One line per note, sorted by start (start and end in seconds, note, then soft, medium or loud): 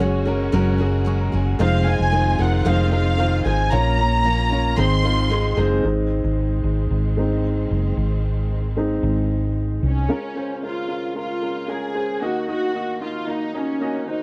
0.00 0.49 F#1 medium
0.00 0.26 F#3 medium
0.00 0.26 G#3 medium
0.00 3.68 G#3 medium
0.00 0.27 C#4 medium
0.00 1.57 C#4 medium
0.00 0.26 C#4 medium
0.00 0.27 F#4 medium
0.00 1.57 F#4 medium
0.00 0.24 G#4 medium
0.00 1.61 C#5 loud
0.25 0.49 G#3 medium
0.25 0.52 G#3 soft
0.25 0.49 C#4 medium
0.25 0.52 C#4 medium
0.25 0.49 F#4 medium
0.25 0.52 G#4 medium
0.25 0.50 A#4 medium
0.52 1.29 F#1 loud
0.52 0.79 F#3 medium
0.52 0.79 G#3 medium
0.52 0.76 G#3 loud
0.52 0.76 C#4 loud
0.52 0.78 C#4 medium
0.52 0.76 F#4 loud
0.52 0.77 G#4 loud
0.52 0.77 A#4 loud
0.78 1.03 G#3 medium
0.78 1.05 G#3 soft
0.78 1.06 C#4 medium
0.78 1.03 C#4 medium
0.78 1.03 F#4 medium
0.78 1.05 G#4 medium
0.78 1.03 G#4 loud
1.05 1.32 F#3 medium
1.05 1.32 G#3 medium
1.05 1.32 C#4 medium
1.05 1.31 G#4 medium
1.05 1.19 C#6 medium
1.21 1.33 A#5 medium
1.32 1.58 F#1 medium
1.32 1.59 G#3 medium
1.32 1.59 C#4 medium
1.32 1.59 G#4 medium
1.32 1.46 G#5 medium
1.47 1.71 F#5 medium
1.58 1.96 F1 loud
1.58 1.86 F2 medium
1.58 1.86 C3 medium
1.58 3.69 D#3 medium
1.58 1.86 D#3 medium
1.58 4.74 F3 medium
1.58 1.82 G#3 loud
1.58 1.86 G#3 medium
1.58 3.69 C4 medium
1.58 1.85 C4 medium
1.58 1.82 D#4 medium
1.58 3.69 F4 medium
1.58 1.83 F4 medium
1.58 1.85 F4 loud
1.58 1.83 C5 loud
1.58 1.85 F5 medium
1.86 2.10 D#3 soft
1.86 2.09 G#3 medium
1.86 2.10 G#3 medium
1.86 2.11 C4 medium
1.86 2.09 D#4 medium
1.86 2.12 F4 medium
1.86 2.09 F4 medium
1.86 2.09 C5 medium
1.86 2.40 G#5 loud
1.99 2.36 F1 loud
2.11 2.38 D#3 medium
2.11 2.38 G#3 medium
2.11 2.35 G#3 medium
2.11 2.38 C4 medium
2.11 2.36 D#4 medium
2.11 2.37 F4 medium
2.11 2.36 F4 medium
2.11 2.36 C5 medium
2.38 2.64 F1 loud
2.38 2.65 D#3 medium
2.38 2.62 G#3 medium
2.38 2.65 G#3 medium
2.38 2.65 C4 medium
2.38 2.62 D#4 medium
2.38 2.65 F4 medium
2.38 2.62 F4 medium
2.38 2.63 A#4 medium
2.38 2.66 F#5 medium
2.65 3.41 F1 loud
2.65 2.92 F2 medium
2.65 2.92 C3 medium
2.65 2.92 D#3 medium
2.65 2.88 G#3 medium
2.65 2.92 G#3 medium
2.65 2.91 C4 medium
2.65 2.89 D#4 medium
2.65 2.89 F4 medium
2.65 2.90 F4 loud
2.65 2.89 C5 loud
2.65 2.91 F5 medium
2.91 3.17 D#3 soft
2.91 3.15 G#3 medium
2.91 3.18 G#3 medium
2.91 3.19 C4 medium
2.91 3.15 D#4 medium
2.91 3.18 F4 medium
2.91 3.15 F4 medium
2.91 3.15 C5 medium
2.91 3.41 F5 medium
3.18 3.45 D#3 medium
3.18 3.41 G#3 medium
3.18 3.45 G#3 medium
3.18 3.44 C4 medium
3.18 3.42 D#4 medium
3.18 3.42 F4 medium
3.18 3.43 F4 medium
3.18 3.42 C5 medium
3.44 3.70 G#1 medium
3.44 3.71 D#3 medium
3.44 3.68 G#3 medium
3.44 3.71 G#3 medium
3.44 3.72 C4 medium
3.44 3.68 D#4 medium
3.44 3.71 F4 medium
3.44 3.68 F4 medium
3.44 3.69 C5 medium
3.44 3.72 G#5 medium
3.71 4.74 A#1 loud
3.71 3.98 A#2 medium
3.71 4.48 A#2 medium
3.71 3.98 F3 medium
3.71 3.95 A#3 medium
3.71 3.98 A#3 medium
3.71 4.77 A#3 medium
3.71 3.98 C#4 medium
3.71 4.77 C#4 medium
3.71 3.95 C#4 medium
3.71 3.95 F4 medium
3.71 3.96 F4 medium
3.71 3.95 C#5 loud
3.71 4.78 A#5 loud
3.98 4.21 A#3 medium
3.98 4.23 A#3 soft
3.98 4.21 C#4 medium
3.98 4.24 C#4 soft
3.98 4.24 F4 medium
3.98 4.22 F4 medium
3.98 4.22 C#5 medium
4.23 4.51 F3 medium
4.23 4.51 A#3 medium
4.23 4.48 A#3 medium
4.23 4.48 C#4 medium
4.23 4.50 C#4 medium
4.23 4.48 F4 medium
4.23 4.48 C#5 medium
4.49 4.74 A#3 medium
4.49 4.77 A#3 soft
4.49 4.77 C#4 medium
4.49 4.75 C#4 medium
4.49 4.77 F4 medium
4.49 4.75 F4 medium
4.53 4.75 C#5 medium
4.76 5.54 G#1 loud
4.76 5.03 G#2 medium
4.76 5.54 G#2 medium
4.76 5.04 D#3 medium
4.76 5.83 D#3 medium
4.76 5.04 G#3 medium
4.76 5.83 G#3 medium
4.76 5.01 G#3 medium
4.76 5.03 C4 medium
4.76 5.83 C4 medium
4.76 5.01 C4 medium
4.76 5.02 D#4 medium
4.76 5.01 D#4 medium
4.76 5.01 G#4 medium
4.76 5.01 C5 medium
4.76 5.58 C6 loud
5.02 5.27 G#3 medium
5.02 5.28 G#3 soft
5.02 5.29 C4 medium
5.02 5.27 C4 medium
5.02 5.30 D#4 soft
5.02 5.28 D#4 medium
5.02 5.28 F4 medium
5.02 5.30 G#4 medium
5.29 5.57 G#3 medium
5.29 5.54 G#3 medium
5.29 5.56 C4 medium
5.29 5.54 C4 medium
5.29 5.56 D#4 medium
5.29 5.54 D#4 medium
5.29 5.55 G#4 medium
5.29 5.54 G#4 medium
5.56 5.82 F#1 medium
5.56 5.80 G#3 medium
5.56 5.85 G#3 soft
5.56 5.80 C4 medium
5.56 5.84 C4 medium
5.56 5.84 D#4 medium
5.56 5.80 D#4 medium
5.56 5.83 G#4 medium
5.56 5.81 C5 medium
5.84 6.21 G#1 medium
5.84 10.05 D#3 medium
5.84 6.19 G#3 medium
5.84 10.06 G#3 medium
5.84 10.05 C4 medium
5.84 6.20 C4 soft
5.84 6.20 D#4 medium
6.24 6.61 G#1 medium
6.64 6.88 G#1 medium
6.91 7.66 G#1 medium
7.17 7.41 G#3 soft
7.17 7.41 C4 soft
7.17 7.41 D#4 soft
7.71 7.95 F#1 medium
7.97 8.99 G#1 medium
8.77 10.05 G#3 soft
8.77 10.06 C4 soft
8.77 10.06 D#4 medium
9.03 9.79 G#1 medium
9.83 10.07 C2 medium
9.83 10.60 C#4 medium
10.09 12.18 C#2 soft
10.09 12.18 C#3 soft
10.09 10.32 G#3 medium
10.09 10.32 C#4 medium
10.09 10.32 F4 medium
10.09 10.33 A#4 medium
10.36 10.59 G#3 medium
10.36 10.59 C#4 medium
10.36 10.59 F4 medium
10.36 10.59 C5 medium
10.63 10.86 G#3 medium
10.63 10.86 C#4 soft
10.63 10.86 F4 medium
10.63 11.16 F4 medium
10.63 10.86 A#4 medium
10.88 11.12 G#3 medium
10.88 11.12 C#4 soft
10.88 11.12 F4 soft
10.88 11.12 A#4 medium
11.15 11.38 G#3 soft
11.15 11.39 C#4 soft
11.15 11.39 F4 soft
11.15 11.66 F4 medium
11.15 11.39 A#4 medium
11.42 11.65 G#3 medium
11.42 11.65 C#4 soft
11.42 11.66 F4 soft
11.42 11.66 A#4 medium
11.68 11.91 G#3 medium
11.68 11.92 C#4 medium
11.68 11.92 F4 medium
11.68 12.22 G#4 medium
11.68 11.92 A#4 medium
11.95 12.18 G#3 medium
11.95 12.18 C#4 medium
11.95 12.18 F4 medium
11.95 12.19 C5 medium
12.21 14.23 D#2 medium
12.21 14.23 D#3 soft
12.21 12.44 A#3 medium
12.21 12.45 D#4 medium
12.21 12.45 F#4 medium
12.21 12.47 F#4 medium
12.21 12.45 D#5 medium
12.47 12.71 A#3 medium
12.47 12.71 D#4 medium
12.47 12.71 F#4 medium
12.47 12.98 F#4 medium
12.47 12.72 D#5 medium
12.74 12.98 A#3 medium
12.74 12.98 D#4 medium
12.74 12.98 F#4 medium
12.74 12.98 D#5 medium
13.00 13.24 A#3 medium
13.00 13.24 D#4 soft
13.00 13.29 F4 medium
13.00 13.25 F#4 soft
13.00 13.25 D#5 medium
13.26 13.50 A#3 medium
13.26 13.51 D#4 soft
13.26 13.55 D#4 medium
13.26 13.51 F#4 soft
13.26 13.51 F5 medium
13.53 13.77 A#3 medium
13.53 14.09 C#4 medium
13.53 13.78 D#4 medium
13.53 13.78 F#4 medium
13.53 13.78 D#5 medium
13.80 14.04 A#3 medium
13.80 14.04 D#4 medium
13.80 14.05 F#4 medium
13.80 14.05 D#5 medium
14.07 14.23 A#3 medium
14.07 14.23 D#4 medium
14.07 14.23 F#4 medium
14.07 14.23 C5 medium